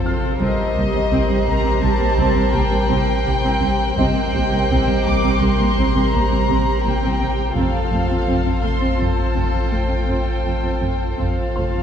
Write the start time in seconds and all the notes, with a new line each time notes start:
Already playing: F1 A1 F2
0.05 C4 F4 A4 C5 F6
0.39 A1 C2 C4 G4 A#4 C5 D#5 C6
0.75 C2 A#3
0.93 C2 C4
1.12 C2 C4 F#6
1.29 C2 C4
1.47 C2 A#3 A#5
1.63 C2 C4
1.81 C2 C4 A5
1.99 C2 A#3
2.17 C2 C4
2.35 C2 C4
2.52 C2 A#3 G5
2.71 C2 C4
2.89 C2 C4
3.25 C2 A#3
3.43 C2 C4
3.61 C2 C4
3.97 A1 C2 C4 G4 A#4 C5 D#5 G5
4.33 C2 A#3
4.52 C2 C4
4.70 C2 C4
4.87 C2 C4
5.05 C2 A#3 D6
5.23 C2 C4
5.40 C2 C4 C6
5.59 C2 A#3
5.77 C2 C4
5.95 C2 C4
6.10 C2 A#3 A#5
6.31 C2 C4
6.48 C2 C4
6.83 C2 A#3 G5
7.01 C2 C4
7.20 C2 C4
7.55 F1 A1 F2 C4 F4 A4 C5 F5
7.91 F1 F2 A3
8.10 F2 C4
8.27 F1 F2 C4
8.46 F2 C4
8.63 F1 F2 A3 C6
8.80 F2 C4
8.98 F1 F2 C4 A5
9.17 F2 A3
9.34 F1 F2 C4
9.52 F2 C4
9.70 F1 F2 A3 G5
9.88 F2 C4
10.07 F1 F2 C4
10.44 F1 F2 A3
10.63 F2 C4
10.81 F1 F2 C4
11.18 F1 A1 F2 C4 F4 A4 C5 F5
11.55 F1 F2 A3 C5 C6
11.75 F2 C4